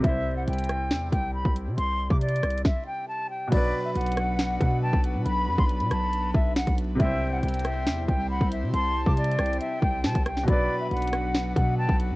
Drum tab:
CC |------------------------------------------------------------------------------------------------|------------------------------------------------------------------------------------------------|x-----------------------------------------------------------------------------------------------|------------------------------------------------------------------------------------------------|
HH |x-----------------------x--x--x--x--x-----------x-----------x-----------------------x-----------|x-----------------------x---x---x---x---x---x---------------------------------------------------|x-----------------------x--x--x--x--x-----------x-----------x-----------------------x-----------|x-----------------------x-----x-----x-----------x-----------------------x-----x-----x-----------|
SD |------------------------------------r-----------o-----------------------------------------------|------------------------------------r-----------o-----------------------------------------------|------------------------------------r-----------o-----------------------------------------------|------------------------------------r-----------------------------------o-----------------------|
BD |o-----------------------------------------------------------o-----------------o-----------------|------------------o-----------------------------o-----------------------------------------------|o-----------------------------------------------------------o-----------------o-----------------|------------------o-----------------------------------------o-----------------o-----------------|

CC |------------------------------------------------------------------------------------------------|------------------------------------------------------------------------------------------------|------------------------------------------------------------------------------------------------|
HH |x-----------------------x--x--x--x--x-----------x-----------x-----------------------x-----------|x-----------------------x---x---x---x---x---x---x-----------------------x-----x-----x-----------|x-----------------------x--x--x--x--x-----------x-----------x-----------------------x-----------|
SD |------------------------------------r-----------o-----------------------------------------------|------------------------------------r-----------------------------------o-----------r-----o-----|------------------------------------r-----------o-----------------------------------------------|
BD |o-----------------------------------------------------------o-----------------o-----------------|------------------o-----------------------------------------o-----------------o-----------------|o-----------------------------------------------------------o-----------------o-----------------|